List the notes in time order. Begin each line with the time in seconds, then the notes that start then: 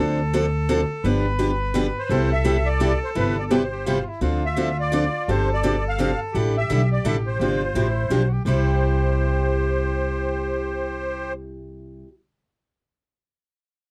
Already playing: D2 D3 A4
0.00 F3 C4 D4 A4
0.33 D3 F3 C4 D4 A4
0.69 D3 F3 C4 D4 A4
1.04 G1 D3 F3 B3 D4 G4 B4
1.39 D3 F3 B3 D4 G4
1.74 D3 F3 B3 D4 G4
1.99 C5
2.05 B4
2.09 C2 C3 G3 B3 E4 G4 A4
2.32 E5
2.44 C3 G3 B3 E4 G4
2.66 D5
2.80 C3 G3 B3 E4 G4
3.04 C5
3.15 G1 C3 G3 B3 E4 G4 B4
3.39 D5
3.50 C3 G3 B3 E4 G4 C5
3.71 G4
3.85 C3 G3 B3 E4 F4 G4
4.07 E4
4.21 D2 D3 F3 C4 D4 F4 A4
4.45 E5
4.57 D3 F3 C4 D4 A4
4.80 D5
4.92 D3 F3 C4 D4 A4
5.28 G1 C3 F3 C4 D4 G4 A4 C5
5.54 D5
5.63 C3 F3 C4 D4 G4
5.89 F5
5.98 C3 F3 C4 D4 G4
6.33 A1 D3 G3 D4 E4 G4 A4
6.57 E5
6.70 B1 D3 G3 D4 E4 A4
6.92 D5
7.05 A1 D3 G3 D4 E4 A4 E5
7.27 C5
7.39 G1 C3 F3 C4 D4 F4 G4
7.75 A1 C3 F3 C4 D4 E4 G4
8.10 B1 C3 F3 C4 D4 F4 G4
8.27 F#4
8.32 G4
8.44 C2 C3 G3 E4 G4 C5
8.48 G4